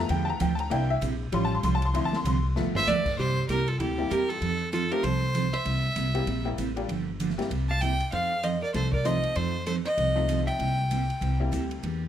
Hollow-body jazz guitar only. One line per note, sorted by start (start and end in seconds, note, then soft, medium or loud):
2.76 2.88 C5 medium
2.88 3.18 B4 medium
3.20 3.47 G4 medium
3.50 3.69 G4 medium
3.69 3.80 F4 medium
3.80 4.12 E4 medium
4.12 4.30 G4 medium
4.30 4.72 F4 medium
4.74 4.92 F4 medium
4.92 5.04 G4 medium
5.04 5.54 A4 medium
5.54 6.46 C5 medium
7.71 7.82 F5 medium
7.82 8.13 E5 medium
8.13 8.41 C5 medium
8.44 8.62 C5 medium
8.62 8.73 A#4 medium
8.75 8.92 A4 medium
8.94 9.06 A#4 medium
9.06 9.36 C5 medium
9.36 9.66 A4 medium
9.67 9.72 A4 medium
9.85 10.43 C5 medium
10.47 11.36 E5 medium